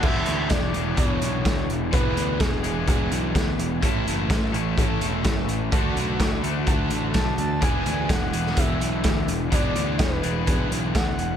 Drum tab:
CC |x---------------|----------------|----------------|----------------|
HH |--x-x-x-x-x-x-x-|x-x-x-x-x-x-x-x-|x-x-x-x-x-x-x-x-|x-x-x-x-x-x-x-x-|
SD |----o-------o---|----o-------o---|----o-------o---|----o-------o---|
BD |o---o---o---o---|o---o---o---o---|o---o---o---o---|o---o---o---o---|

CC |----------------|----------------|
HH |x-x-x-x-x-x-x-x-|x-x-x-x-x-x-x-x-|
SD |----o--o----o---|----o-------o---|
BD |o---o---o---o---|o---o---o---o---|